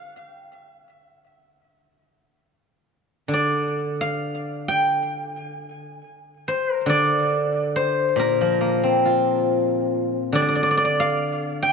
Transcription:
Already playing: F#5
0.30 G5
3.28 D3
3.34 D5
4.01 F5
4.68 G5
6.48 C5
6.73 A#4
6.86 D3 D5
7.76 C5
8.16 A#2 A#4
8.41 F3
8.61 A#3
8.84 C4
9.05 F4
10.32 D3 D5
10.42 D5
10.49 D5
10.55 D5
10.63 D5
10.71 D5
10.77 D5
10.85 D5
11.00 F5
11.63 G5

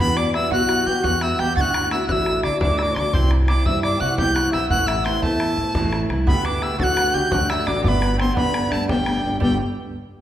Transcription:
0.00 E2 E3 G3 B3 F#4 B4 B5
0.17 D4 D5 D6, bodhran
0.33 E3 G3 B3 E4 F#4 E5 E6, bodhran
0.51 B1 E3 G3 B3 F#4 F#5 F#6, bodhran
0.68 F#4, bodhran
0.86 E3 G3 B3 F#4 G4 G5 G6
1.03 E2 E3 G3 B3 F#4 F#5 F#6, bodhran
1.13 bodhran
1.21 E4 E5 E6, bodhran
1.38 E2 E3 G3 B3 F#4 G4 G5 G6, bodhran
1.56 D2 A2 E3 A3 D4 F#4 F#5 A6, bodhran
1.61 F#6
1.69 F#5
1.74 F#4, bodhran
1.80 F#5
1.91 E3 A3 D4 E4 F#4 E5 E6, bodhran
2.08 A1 D2 A2 E3 A3 D4 E4 F#4 E5 E6 F#6, bodhran
2.21 E4
2.26 bodhran
2.32 E4
2.43 D3 E3 A3 D4 F#4 D5 D6, bodhran
2.60 D2 A2 E3 A3 D4 F#4 D5 D6, bodhran
2.70 bodhran
2.75 E5 E6, bodhran
2.79 D5 D6
2.92 D2 E3 C5 C6
2.96 A3 D4 F#4 D5 D6, bodhran
3.13 C2 C3 E3 G3 C4 E4 C5 C6, bodhran
3.31 bodhran
3.47 E3 G3 C4 D4 E4 D6, bodhran
3.65 G2 C3 E3 G3 C4 E4 E5 E6, bodhran
3.83 D4 D5 D6, bodhran
3.96 E4 F#5 G5 F#6
4.01 C3 G3 C4 F#4
4.17 C2 C3 E3 G3 C4 E4 G4 G5 G6, bodhran
4.27 bodhran
4.34 F#4 F#5 F#6, bodhran
4.52 B1 E3 G3 C4 E4 E5 E6, bodhran
4.69 A1 A2 E3 A3 C4 E4 F#4 F#5 F#6, bodhran
4.87 E4 E5 E6, bodhran
5.04 E3 A3 C4 E4 C6, bodhran
5.22 E2 A2 E3 A3 C4 E4 A4 A5, bodhran
5.40 bodhran
5.56 A2 A3 C4 E4
5.74 A1 A2 E3 A3 C4 E4, bodhran
5.84 bodhran
5.93 bodhran
6.09 C2 E3 A3 C4 E4, bodhran
6.26 D2 A2 D3 G3 A3 B3 G4 B4 B5, bodhran
6.44 D4 D6, bodhran
6.61 D3 G3 A3 E4 G4 E6, bodhran
6.78 D2 A2 D3 A3 D4 F#4 F#5 A6, bodhran
6.83 F#6
6.90 F#4
6.97 bodhran
7.01 F#4
7.13 D3 A3 D4 F#4 G4 G5 G6
7.31 D2 A2 D3 A3 D4 F#4 F#5 F#6, bodhran
7.41 bodhran
7.49 E4 E5 E6, bodhran
7.65 A1 D3 A3 D4 F#4 D5 D6, bodhran
7.76 C4
7.83 G1 G2 D3 G3 A3 B3 D4 B4 D6, bodhran
7.88 B5
8.02 B4, bodhran
8.18 G3 A3 B3 C4 D4 C5 C6, bodhran
8.34 D2 G2 D3 G3 A3 B3 D4 B4 B5, bodhran
8.54 bodhran
8.70 G2 G3 A3 B3 D4 A4 A5, bodhran
8.87 G1 G2 D3 G3 A3 B3 D4 G4 G5, bodhran
8.98 bodhran
9.06 bodhran
9.22 G1 G3 A3 B3 D4
9.40 G1 G2 D3 G3 A3 B3 D4 G4 G5, bodhran

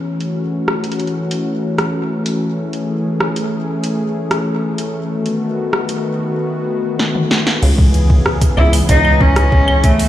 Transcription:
Already playing: E3 C#4
0.05 A3 F#4
0.20 closed hi-hat
0.68 cross-stick
0.84 closed hi-hat
0.92 closed hi-hat
0.99 closed hi-hat
1.07 closed hi-hat
1.31 closed hi-hat
1.78 cross-stick, closed hi-hat
2.26 closed hi-hat
2.57 G#4
2.73 closed hi-hat
3.20 cross-stick
3.36 closed hi-hat
3.84 closed hi-hat
4.31 cross-stick, closed hi-hat
4.78 closed hi-hat
5.10 D#3 B3 F#4
5.26 closed hi-hat
5.73 cross-stick
5.89 closed hi-hat
6.99 snare
7.15 high tom
7.31 snare
7.47 snare
7.63 C#2 C#3 E3 B3 G#4, crash
7.78 kick
7.94 closed hi-hat
8.10 kick
8.26 cross-stick
8.41 kick, closed hi-hat
8.57 C#2 E4, claves
8.73 open hi-hat, claves
8.89 C#2 D#4, kick, closed hi-hat
9.05 claves
9.21 C#4, kick
9.36 cross-stick, closed hi-hat
9.52 kick
9.68 claves
9.84 A3, kick, closed hi-hat
9.99 open hi-hat

